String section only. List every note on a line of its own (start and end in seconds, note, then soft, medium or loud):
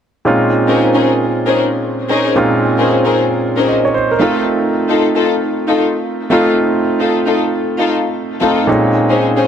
0.68 0.79 C#4 medium
0.68 0.80 D#4 medium
0.68 0.80 G#4 medium
0.68 0.80 A#4 medium
0.68 0.80 C5 medium
0.94 1.06 C#4 medium
0.94 1.06 D#4 medium
0.94 1.06 G#4 medium
0.94 1.06 A#4 medium
0.94 1.06 C5 medium
1.47 1.58 C#4 medium
1.47 1.58 D#4 medium
1.47 1.58 G#4 medium
1.47 1.59 A#4 medium
1.47 1.59 C5 medium
2.09 2.27 C#4 medium
2.09 2.27 D#4 medium
2.09 2.27 G#4 medium
2.09 2.27 A#4 medium
2.09 2.27 C5 medium
2.79 2.90 C#4 medium
2.79 2.90 D#4 medium
2.79 2.90 G#4 medium
2.79 2.90 A#4 medium
2.79 2.90 C5 medium
3.05 3.16 C#4 medium
3.05 3.16 D#4 medium
3.05 3.16 G#4 medium
3.05 3.16 A#4 medium
3.05 3.17 C5 medium
3.57 3.69 C#4 medium
3.57 3.69 D#4 medium
3.57 3.69 G#4 medium
3.57 3.69 A#4 medium
3.57 3.69 C5 medium
4.20 4.37 D#4 medium
4.20 4.38 F4 medium
4.20 4.38 A4 medium
4.89 5.00 D#4 medium
4.89 5.01 F4 medium
4.89 5.01 A4 medium
5.15 5.27 D#4 medium
5.15 5.27 F4 medium
5.15 5.27 A4 medium
5.68 5.79 D#4 medium
5.68 5.80 F4 medium
5.68 5.80 A4 medium
6.31 6.48 D#4 medium
6.31 6.48 F4 medium
6.31 6.48 A4 medium
7.00 7.11 D#4 medium
7.00 7.11 F4 medium
7.00 7.11 A4 medium
7.26 7.37 D#4 medium
7.26 7.38 F4 medium
7.26 7.38 A4 medium
7.78 7.90 D#4 medium
7.78 7.90 F4 medium
7.78 7.90 A4 medium
8.41 8.59 D#4 medium
8.41 8.59 F4 medium
8.41 8.59 A4 medium
9.10 9.22 C#4 medium
9.10 9.22 D#4 medium
9.10 9.22 G#4 medium
9.10 9.22 C5 medium
9.37 9.47 C#4 medium
9.37 9.47 D#4 medium
9.37 9.47 G#4 medium
9.37 9.47 C5 medium